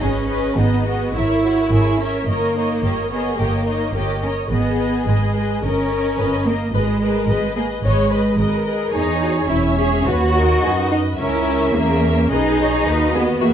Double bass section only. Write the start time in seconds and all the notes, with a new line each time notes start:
0.01 G#1
0.57 G#1
1.16 G#1
1.72 G#1
2.28 G1
2.84 G1
3.39 G1
3.95 G1
4.51 G#1
5.07 G#1
5.64 G1
6.19 G1
6.73 G#1
7.29 G#1
7.83 G#1
8.38 G#1
8.93 E2
9.50 E1
10.07 D#2
10.63 F#2
11.19 C#2
11.74 E2
12.31 B1
12.87 D#2
13.42 E2